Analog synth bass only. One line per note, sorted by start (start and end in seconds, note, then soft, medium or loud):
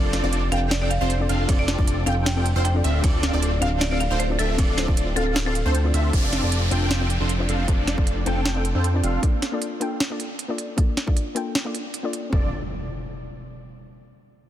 0.00 0.22 F1 loud
0.23 0.50 F1 loud
0.52 0.99 F1 loud
1.01 1.28 F1 loud
1.29 1.47 F1 loud
1.49 1.76 F1 loud
1.78 2.05 F1 loud
2.07 2.54 F1 loud
2.56 2.82 F1 loud
2.84 3.02 D1 loud
3.04 3.31 D1 loud
3.33 3.60 D1 loud
3.62 4.09 D1 loud
4.11 4.37 D1 loud
4.39 4.57 D1 loud
4.58 4.86 D1 loud
4.88 5.15 D1 loud
5.16 5.63 D1 loud
5.65 5.92 D2 loud
5.94 6.11 D2 loud
6.13 6.41 F1 medium
6.43 6.69 F1 loud
6.71 7.18 F1 loud
7.21 7.47 F1 loud
7.49 7.66 F1 loud
7.68 7.96 F1 loud
7.98 8.24 F1 loud
8.26 8.73 F1 loud
8.75 9.02 F2 loud
9.03 9.19 F1 medium
12.33 12.51 F1 medium